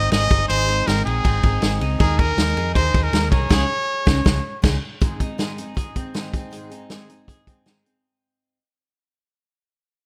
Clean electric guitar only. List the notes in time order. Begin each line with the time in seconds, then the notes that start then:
Already playing: G#2 C4 D#4 G#4
0.13 G#4
0.31 D#4
0.49 G#2 G#4
0.68 D#4
0.88 C4
1.07 D#4
1.26 C4
1.44 D#4
1.63 G#4
1.82 D#4
2.00 D#3 A#4
2.19 G#4
2.38 D#4
2.57 G#4
2.75 D#4
2.95 G#4
3.14 A#4
3.33 G#4
3.51 C#3 G#4
5.02 G#2
5.21 D#4
5.39 G#4
5.58 D#4
5.77 G#4
5.96 C4
6.16 D#4
6.34 C4
6.53 G#2
6.72 D#4
6.91 G#4
7.09 D#4
7.28 G#4
7.47 C4
7.66 D#4
7.85 C4